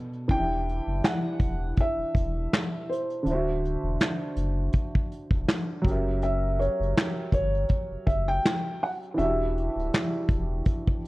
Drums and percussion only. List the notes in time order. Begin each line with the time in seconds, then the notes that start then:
0.13 closed hi-hat
0.29 kick, closed hi-hat
0.69 closed hi-hat
1.04 snare, clap, closed hi-hat
1.40 kick, closed hi-hat
1.77 kick, closed hi-hat
2.15 kick, closed hi-hat
2.53 snare, clap, closed hi-hat
2.92 closed hi-hat
3.10 closed hi-hat
3.26 closed hi-hat
3.65 closed hi-hat
4.00 snare, clap, closed hi-hat
4.36 closed hi-hat
4.72 kick, closed hi-hat
4.95 kick
5.12 closed hi-hat
5.31 kick, closed hi-hat
5.48 snare, clap, closed hi-hat
5.85 kick, closed hi-hat
6.22 closed hi-hat
6.61 closed hi-hat
6.83 closed hi-hat
6.97 snare, clap, closed hi-hat
7.32 kick, closed hi-hat
7.54 closed hi-hat
7.69 kick, closed hi-hat
8.07 kick, closed hi-hat
8.28 closed hi-hat
8.45 snare, clap, closed hi-hat
8.85 open hi-hat
9.03 closed hi-hat
9.19 closed hi-hat
9.58 closed hi-hat
9.79 closed hi-hat
9.94 snare, clap, closed hi-hat
10.29 kick, closed hi-hat
10.65 kick, closed hi-hat
10.88 kick